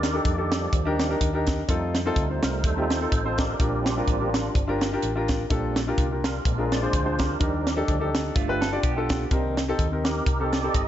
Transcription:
Already playing: D#2 D#3 G4 A#4 D5
0.03 snare, closed hi-hat
0.13 D4 D#4 G4 A4
0.24 F2 A#3 G4, kick, closed hi-hat
0.37 D4 D#4 G4 A4
0.51 F3 G3 D4, snare, closed hi-hat
0.73 D#2, kick, closed hi-hat
0.85 D4 D#4 G4 A#4
0.99 snare, closed hi-hat
1.09 D4 D#4 G4 A#4
1.21 D#2, kick, closed hi-hat
1.33 D4 D#4 G4 A#4
1.47 kick, snare, closed hi-hat
1.68 F2 G3 A3 C4 D#4 F4 A4, kick, closed hi-hat
1.95 snare, closed hi-hat
2.06 C4 D#4 F4 A4
2.16 D2, kick, closed hi-hat
2.29 C4 D#4 F4 C5
2.43 C2 A#4, snare, closed hi-hat
2.64 D#2 G3 A3 D#4 A4 C5, kick, closed hi-hat
2.77 C4 D#4 F4 G4
2.90 snare, closed hi-hat
3.01 C4 D#4 F4 A4
3.12 A1 C5, kick, closed hi-hat
3.24 C4 D#4 F4 C5
3.38 D4 G4 A#4, kick, snare, closed hi-hat
3.59 A#1 A#2 G3 C4 D4 F4 G4 A#4, kick, closed hi-hat
3.79 E4
3.86 D4 F4, snare, closed hi-hat
3.97 D4 F4 G4 A#4
4.08 A1, kick, closed hi-hat
4.20 D4 F4 G4 A#4
4.34 snare, closed hi-hat
4.53 G1 G3 C4 D4, kick, closed hi-hat
4.68 D4 F4 G4 A#4
4.81 snare, closed hi-hat
4.93 D4 F4 G4 A#4
5.02 A1, closed hi-hat
5.15 D4 F4 G4 A#4
5.28 kick, snare, closed hi-hat
5.50 A#1 A#2 G3 C4 D4 F4 G4 A4, kick, closed hi-hat
5.76 snare, closed hi-hat
5.87 D4 F4 G4 A#4
5.98 C2, kick, closed hi-hat
6.11 D4 F4 G4 A#4
6.24 D4 F4 A#4, snare, closed hi-hat
6.45 A#1 A#2 G#3 C4 D4, kick, closed hi-hat
6.58 D4 F4 G#4 A#4
6.72 D5, snare, closed hi-hat
6.82 D4 F4 G#4 C5
6.93 D2 C5, kick, closed hi-hat
7.05 D4 F4 G#4 C5
7.19 D4 G4 A#4, kick, snare, closed hi-hat
7.39 D#2 D#3 F3 G3 D4 D#4 G4 A#4, kick, closed hi-hat
7.67 snare, closed hi-hat
7.76 D4 D#4 G4 A4
7.88 D2, kick, closed hi-hat
8.00 D4 D#4 G4 A4
8.15 snare, closed hi-hat
8.35 G1 G2 F3 A3 B3 F4, kick, closed hi-hat
8.48 D4 F4 G4 B4
8.61 A4, snare, closed hi-hat
8.72 D4 F4 G4 D5
8.83 B1 B3 G4, kick, closed hi-hat
8.96 D4 F4 G4 A4
9.09 kick, snare, closed hi-hat
9.30 C2 C3 D#3 A#3 C4 D4 D#4 G4 A#4, kick, closed hi-hat
9.57 snare, closed hi-hat
9.68 C4 D#4 G4 A4
9.79 D#2, kick, closed hi-hat
9.92 C4 D#4 G4 A#4
10.04 D#4 G4 A#4, snare, closed hi-hat
10.26 C2, kick, closed hi-hat
10.40 C4 D#4 G4 A4
10.52 D5, snare, closed hi-hat
10.63 C4 D#4 G4 A4
10.73 G1 D#5, kick, closed hi-hat

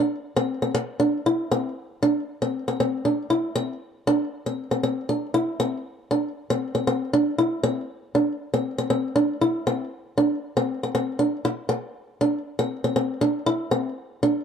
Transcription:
Already playing: D4
0.36 C4
0.62 C4
0.75 muted steel-string acoustic guitar stroke
1.00 D4
1.26 E4
1.52 C4
2.03 D4
2.42 C4
2.68 C4
2.80 C4
3.05 D4
3.30 E4
3.55 C4
4.07 D4
4.46 C4
4.71 C4
4.83 C4
5.09 D4
5.34 E4
5.60 C4
6.11 D4
6.50 C4
6.75 C4
6.87 C4
7.13 D4
7.38 E4
7.63 C4
8.15 D4
8.54 C4
8.78 C4
8.90 C4
9.16 D4
9.41 E4
9.67 C4
10.18 D4
10.57 C4
10.83 C4
10.95 C4
11.19 D4
11.45 muted steel-string acoustic guitar stroke
11.69 muted steel-string acoustic guitar stroke
12.21 D4
12.59 C4
12.84 C4
12.96 C4
13.21 D4
13.46 E4
13.71 C4
14.23 D4

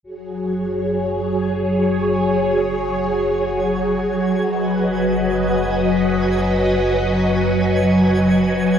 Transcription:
0.03 F#1 F#3 F#4 G#4 C#5 G#5
4.43 F#1 B4 D#5

